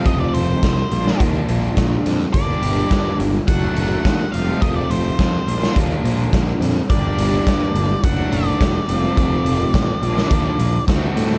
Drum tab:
HH |x-x-x-x-x-x-x-x-|x-x-x-x-x-x-x-x-|x-x-x-x-x-x-x-x-|x-x-x-x-x-x-x-x-|
SD |----o--o----o-o-|----o-------o---|----o--o----o-o-|----o-------o---|
BD |o---o---o---o---|o---o---o---o---|o---o---o---o---|o---o---o---o---|

HH |x-x-x-x-x-x-x-x-|
SD |----o--o----o-o-|
BD |o---o---o---o---|